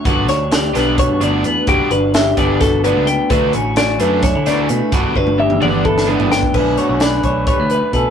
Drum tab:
CC |--------------|--------------|--------------|--------------|
HH |x-x-x-x-x-x-x-|x-x-x-x-x-x-x-|x-x-x-x-x-x-x-|x-------------|
SD |--o-o-o-------|----o---o-----|----o---o-o---|---------o--o-|
T1 |--------------|--------------|--------------|---o----------|
T2 |--------------|--------------|--------------|-----oo-------|
FT |--------------|--------------|--------------|-----------o--|
BD |o-------o-----|o-----o-o-----|o-------o-----|o-o-----o----o|

CC |x-------------|
HH |--x-x-x-x-x-x-|
SD |----o---------|
T1 |--------------|
T2 |--------------|
FT |--------------|
BD |o-----o-o---o-|